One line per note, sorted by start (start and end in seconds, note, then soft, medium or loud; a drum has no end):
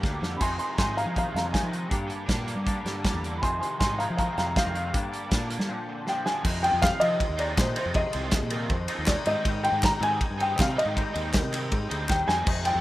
0.00 0.20 D2 medium
0.00 0.19 D3 medium
0.00 0.39 D3 medium
0.00 0.40 G3 medium
0.00 0.22 G3 medium
0.00 0.40 A#3 medium
0.00 0.22 D4 medium
0.00 kick loud
0.00 snare medium
0.05 0.21 A#3 medium
0.05 0.19 D4 medium
0.20 0.39 F2 medium
0.20 0.40 D3 medium
0.20 0.40 G3 medium
0.20 0.40 A#3 medium
0.20 0.39 D4 medium
0.20 snare medium
0.37 1.34 F2 medium
0.37 0.77 F2 medium
0.37 0.78 C3 medium
0.37 0.78 D#3 medium
0.37 0.39 B5 medium
0.37 closed hi-hat medium
0.37 crash medium
0.41 0.58 F2 medium
0.41 0.79 G#3 medium
0.41 0.79 D#4 loud
0.41 0.57 G#5 medium
0.41 0.58 C6 medium
0.41 kick loud
0.58 1.13 D#3 medium
0.58 0.76 G#5 medium
0.58 0.77 C6 medium
0.58 closed hi-hat medium
0.76 1.16 F2 medium
0.76 1.04 G#2 medium
0.76 1.13 C3 medium
0.76 0.97 D#3 loud
0.76 0.96 G#3 medium
0.76 1.72 D#4 medium
0.76 0.96 G#5 medium
0.76 0.97 C6 medium
0.76 kick loud
0.76 snare loud
0.76 closed hi-hat medium
0.80 0.94 D#4 loud
0.96 1.14 D#3 medium
0.96 1.91 G#3 medium
0.96 1.15 G#3 medium
0.96 1.16 D#4 medium
0.96 1.15 F5 medium
0.96 1.15 A#5 medium
0.96 closed hi-hat medium
1.06 1.23 F3 medium
1.14 1.51 C3 medium
1.14 1.49 D#3 medium
1.14 1.52 D#3 medium
1.14 1.53 G#3 medium
1.14 1.54 D#4 medium
1.14 kick loud
1.14 closed hi-hat medium
1.18 1.34 F5 medium
1.18 1.35 A#5 medium
1.31 1.52 F2 medium
1.31 1.68 C3 medium
1.36 1.53 F5 medium
1.36 1.54 A#5 medium
1.36 snare medium
1.36 closed hi-hat medium
1.50 1.89 C3 medium
1.50 1.90 D#3 medium
1.50 1.72 D#3 medium
1.50 1.71 G#3 medium
1.50 1.90 G#5 medium
1.50 kick loud
1.54 1.69 D#4 medium
1.54 snare loud
1.54 closed hi-hat medium
1.63 1.89 F3 medium
1.69 1.90 C3 medium
1.69 1.90 D#3 medium
1.69 1.90 G#3 medium
1.69 1.89 D#4 medium
1.73 closed hi-hat medium
1.88 2.84 G2 medium
1.88 2.24 G2 loud
1.88 2.09 G2 medium
1.88 2.25 D3 medium
1.88 2.27 G3 loud
1.88 2.27 A#3 medium
1.88 2.28 D4 medium
1.88 kick loud
1.88 closed hi-hat medium
2.07 2.64 G3 medium
2.07 closed hi-hat medium
2.26 2.65 G2 medium
2.26 2.55 A#2 medium
2.26 2.62 D3 medium
2.26 2.46 G3 medium
2.26 2.45 A#3 medium
2.26 3.22 D4 medium
2.26 2.43 D4 loud
2.26 kick loud
2.26 snare loud
2.26 closed hi-hat loud
2.45 2.63 G3 medium
2.45 3.41 A#3 medium
2.45 2.64 A#3 medium
2.45 2.65 D4 medium
2.45 closed hi-hat medium
2.56 2.74 G3 medium
2.64 3.01 D3 medium
2.64 3.02 G3 medium
2.64 3.03 G3 medium
2.64 3.03 A#3 medium
2.64 3.04 D4 medium
2.64 kick loud
2.64 closed hi-hat medium
2.85 3.02 G2 medium
2.85 3.23 D3 medium
2.85 snare medium
2.85 closed hi-hat medium
3.02 3.40 D3 medium
3.02 3.24 G3 medium
3.02 3.42 G3 medium
3.02 3.23 A#3 medium
3.02 3.21 D4 medium
3.02 kick loud
3.02 snare loud
3.02 closed hi-hat medium
3.14 3.40 E2 loud
3.22 3.43 D3 medium
3.22 3.42 G3 medium
3.22 3.42 A#3 medium
3.22 3.41 D4 medium
3.22 closed hi-hat medium
3.37 3.77 F2 loud
3.37 3.40 B5 medium
3.42 4.36 F2 medium
3.42 3.60 F2 medium
3.42 3.78 C3 medium
3.42 3.78 D#3 loud
3.42 3.79 G#3 medium
3.42 3.80 C4 medium
3.42 3.58 G#5 medium
3.42 3.60 C6 medium
3.42 kick loud
3.42 closed hi-hat medium
3.59 4.19 D#3 medium
3.59 3.78 G#5 medium
3.59 3.78 C6 medium
3.59 closed hi-hat medium
3.78 4.17 F2 medium
3.78 4.06 G#2 medium
3.78 4.16 C3 loud
3.78 4.00 D#3 medium
3.78 3.99 G#3 medium
3.78 3.97 C4 loud
3.78 4.75 D#4 medium
3.78 3.97 G#5 medium
3.78 3.98 C6 medium
3.78 kick loud
3.78 snare loud
3.78 closed hi-hat medium
3.98 4.18 D#3 medium
3.98 4.19 G#3 medium
3.98 4.94 G#3 medium
3.98 4.20 C4 medium
3.98 4.16 F5 medium
3.98 4.17 A#5 medium
3.98 closed hi-hat medium
4.10 4.27 F3 loud
4.17 4.54 C3 medium
4.17 4.55 D#3 medium
4.17 4.55 G#3 medium
4.17 4.57 C4 medium
4.17 4.35 F5 medium
4.17 4.36 A#5 medium
4.17 kick loud
4.17 closed hi-hat medium
4.38 4.54 F2 loud
4.38 4.74 C3 medium
4.38 4.55 F5 medium
4.38 4.56 A#5 medium
4.38 snare medium
4.38 closed hi-hat medium
4.55 4.92 C3 medium
4.55 4.93 D#3 medium
4.55 4.77 D#3 medium
4.55 4.76 G#3 medium
4.55 4.74 C4 medium
4.55 4.93 F5 medium
4.55 kick loud
4.55 snare loud
4.55 closed hi-hat medium
4.66 4.91 F2 loud
4.75 4.93 C3 medium
4.75 4.94 D#3 medium
4.75 4.93 G#3 medium
4.75 4.93 C4 medium
4.75 closed hi-hat medium
4.93 5.30 G2 loud
4.93 5.69 G2 medium
4.93 5.11 G2 medium
4.93 5.31 D3 loud
4.93 5.31 G3 loud
4.93 5.32 A#3 loud
4.93 5.32 D4 loud
4.93 kick loud
4.93 closed hi-hat loud
5.12 5.69 G3 medium
5.12 closed hi-hat medium
5.31 5.67 G2 medium
5.31 5.57 A#2 medium
5.31 5.67 D3 loud
5.31 5.51 G3 medium
5.31 5.50 A#3 medium
5.31 5.69 D4 medium
5.31 5.48 D4 loud
5.31 kick loud
5.31 snare loud
5.31 closed hi-hat loud
5.49 5.68 G3 medium
5.49 5.69 A#3 medium
5.49 5.68 A#3 medium
5.49 5.67 D4 medium
5.49 closed hi-hat medium
5.59 5.68 G3 loud
5.59 snare medium
5.67 6.25 A#2 loud
5.67 6.45 A#2 medium
5.67 6.05 D3 medium
5.67 6.06 F3 loud
5.67 6.07 C4 loud
5.67 6.08 D4 loud
5.88 6.25 D3 medium
6.06 6.43 D3 medium
6.06 6.27 F3 medium
6.06 6.45 F3 medium
6.06 6.25 C4 medium
6.06 6.24 D4 medium
6.06 6.27 G5 loud
6.06 snare medium
6.25 6.44 D3 medium
6.25 6.44 F3 medium
6.25 6.44 C4 medium
6.25 6.43 D4 medium
6.25 6.64 G#5 loud
6.25 snare medium
6.43 7.19 F2 loud
6.43 6.70 F2 loud
6.43 7.20 C3 medium
6.43 7.02 D#3 medium
6.43 7.02 G#3 loud
6.43 7.01 D#4 loud
6.43 kick loud
6.43 crash loud
6.63 6.88 F3 medium
6.63 6.88 G#3 loud
6.63 6.87 C4 medium
6.63 6.87 F4 loud
6.63 6.82 G5 loud
6.63 ride medium
6.73 6.90 F2 medium
6.82 6.99 F5 loud
6.82 kick loud
6.82 snare loud
6.82 clap loud
6.82 ride loud
7.00 7.41 D#3 medium
7.00 7.25 F3 medium
7.00 7.18 F3 loud
7.00 7.25 G#3 medium
7.00 7.39 G#3 medium
7.00 7.25 C4 medium
7.00 7.38 D#4 medium
7.00 7.25 F4 medium
7.00 7.39 D#5 loud
7.00 ride medium
7.20 kick loud
7.20 ride loud
7.29 7.55 D#2 medium
7.37 7.63 F3 medium
7.37 7.62 G#3 medium
7.37 7.58 G#3 medium
7.37 7.63 C4 medium
7.37 7.59 D#4 medium
7.37 7.62 F4 medium
7.37 7.58 D5 medium
7.37 ride medium
7.42 7.57 D#3 medium
7.56 7.74 A#2 medium
7.56 7.93 C3 medium
7.56 7.76 D#3 medium
7.56 7.76 G#3 medium
7.56 7.75 D#4 medium
7.56 7.75 C5 medium
7.56 kick loud
7.56 snare loud
7.56 clap loud
7.56 ride loud
7.75 7.94 D#3 medium
7.75 8.01 F3 medium
7.75 8.00 G#3 medium
7.75 7.95 G#3 medium
7.75 8.00 C4 loud
7.75 7.96 D#4 medium
7.75 8.00 F4 loud
7.75 7.94 C5 medium
7.75 ride medium
7.86 8.03 F2 medium
7.94 8.69 F2 loud
7.94 8.70 C3 medium
7.94 8.52 D#3 loud
7.94 8.51 G#3 loud
7.94 8.49 D#4 loud
7.94 8.66 D#5 medium
7.94 kick loud
7.94 ride loud
8.12 8.40 C2 loud
8.12 8.38 F3 medium
8.12 8.38 G#3 medium
8.12 8.38 C4 medium
8.12 8.37 F4 medium
8.12 ride medium
8.31 8.52 G#4 medium
8.31 kick loud
8.31 snare loud
8.31 clap loud
8.31 ride loud
8.43 8.68 A#2 loud
8.50 8.90 D#3 medium
8.50 8.76 F3 medium
8.50 8.89 G#3 medium
8.50 8.76 G#3 medium
8.50 8.76 C4 medium
8.50 8.88 D#4 medium
8.50 8.75 F4 medium
8.50 8.70 A#4 medium
8.50 ride loud
8.70 8.87 F2 medium
8.70 8.97 C5 loud
8.70 kick loud
8.70 ride medium
8.88 9.06 D#3 medium
8.88 9.13 F3 medium
8.88 9.13 G#3 medium
8.88 9.09 G#3 medium
8.88 9.13 C4 medium
8.88 9.09 D#4 medium
8.88 9.13 F4 medium
8.88 ride loud
8.98 9.15 D#2 medium
9.06 9.25 C3 medium
9.06 9.25 D#3 medium
9.06 9.26 G#3 medium
9.06 9.25 D#4 medium
9.06 9.27 D5 medium
9.06 kick loud
9.06 snare loud
9.06 clap loud
9.06 ride loud
9.25 9.35 G#2 medium
9.25 9.43 G#2 medium
9.25 9.51 D#3 medium
9.25 9.42 D#3 medium
9.25 9.44 G3 medium
9.25 9.51 G#3 medium
9.25 9.50 C4 medium
9.25 9.45 C4 medium
9.25 9.46 D#4 loud
9.25 9.50 D#4 loud
9.25 9.65 D#5 medium
9.25 ride medium
9.43 10.44 G#2 loud
9.43 9.71 G#2 medium
9.43 10.20 D#3 loud
9.43 10.03 G3 loud
9.43 10.02 C4 loud
9.43 10.00 D#4 loud
9.43 kick loud
9.43 ride loud
9.63 9.89 D#3 medium
9.63 9.89 G#3 loud
9.63 9.88 C4 loud
9.63 9.88 D#4 medium
9.63 9.81 G5 loud
9.63 ride medium
9.72 9.90 G#2 loud
9.83 10.03 A#5 loud
9.83 kick loud
9.83 snare loud
9.83 clap loud
9.83 ride loud
9.99 10.18 G#2 loud
9.99 10.25 D#3 medium
9.99 10.40 G3 medium
9.99 10.25 G#3 medium
9.99 10.25 C4 medium
9.99 10.40 C4 medium
9.99 10.25 D#4 medium
9.99 10.38 D#4 medium
9.99 ride medium
10.03 10.41 G#5 loud
10.21 kick loud
10.21 ride loud
10.30 10.56 G2 medium
10.37 10.63 D#3 medium
10.37 10.63 G#3 medium
10.37 10.63 C4 medium
10.37 10.58 C4 medium
10.37 10.63 D#4 medium
10.37 10.58 D#4 medium
10.37 ride medium
10.41 10.56 G3 medium
10.41 10.60 G5 loud
10.56 10.76 C3 loud
10.56 10.94 D#3 medium
10.56 10.78 G3 medium
10.56 10.77 C4 loud
10.56 10.76 D#4 medium
10.56 kick loud
10.56 snare loud
10.56 clap loud
10.56 ride loud
10.61 10.79 F5 medium
10.76 11.01 D#3 medium
10.76 10.95 G3 medium
10.76 11.01 G#3 medium
10.76 11.01 C4 medium
10.76 10.97 C4 medium
10.76 11.01 D#4 loud
10.76 10.97 D#4 medium
10.76 11.13 D#5 loud
10.76 ride medium
10.85 11.03 G#2 medium
10.95 11.70 G#2 loud
10.95 11.71 D#3 medium
10.95 11.53 G3 loud
10.95 11.53 C4 loud
10.95 11.51 D#4 loud
10.95 kick loud
10.95 ride loud
11.13 11.41 D#2 loud
11.13 11.39 D#3 medium
11.13 11.39 G#3 medium
11.13 11.38 C4 medium
11.13 11.38 D#4 loud
11.13 11.34 D#5 loud
11.13 ride medium
11.33 11.72 A#4 loud
11.33 kick loud
11.33 snare loud
11.33 clap medium
11.33 ride loud
11.43 11.69 C3 medium
11.52 11.77 D#3 medium
11.52 11.91 G3 medium
11.52 11.77 G#3 medium
11.52 11.77 C4 medium
11.52 11.90 C4 medium
11.52 11.89 D#4 medium
11.52 11.77 D#4 medium
11.52 clap medium
11.52 ride loud
11.72 11.89 G#2 medium
11.72 11.98 G#4 medium
11.72 kick loud
11.72 ride loud
11.89 12.07 D2 medium
11.89 12.15 D#3 medium
11.89 12.09 G3 medium
11.89 12.15 G#3 medium
11.89 12.14 C4 medium
11.89 12.11 C4 medium
11.89 12.14 D#4 medium
11.89 12.12 D#4 medium
11.89 ride medium
12.09 12.26 D#2 medium
12.09 12.45 D#3 medium
12.09 12.29 G3 loud
12.09 12.29 C4 medium
12.09 12.27 D#4 medium
12.09 12.29 G5 loud
12.09 kick loud
12.09 snare medium
12.09 clap loud
12.27 12.45 F2 medium
12.27 12.47 D#3 medium
12.27 12.47 G3 medium
12.27 12.47 G#3 medium
12.27 12.46 C4 medium
12.27 12.47 C4 medium
12.27 12.46 D#4 medium
12.27 12.48 D#4 medium
12.27 12.66 G#5 loud
12.27 snare loud
12.46 12.81 F2 medium
12.46 12.72 F2 medium
12.46 12.81 C3 loud
12.46 12.81 D#3 loud
12.46 12.81 G#3 loud
12.46 12.81 D#4 loud
12.46 kick loud
12.46 crash loud
12.65 12.81 F3 medium
12.65 12.81 G#3 medium
12.65 12.81 C4 medium
12.65 12.81 F4 medium
12.65 12.81 G5 loud
12.65 ride medium
12.75 12.81 F2 loud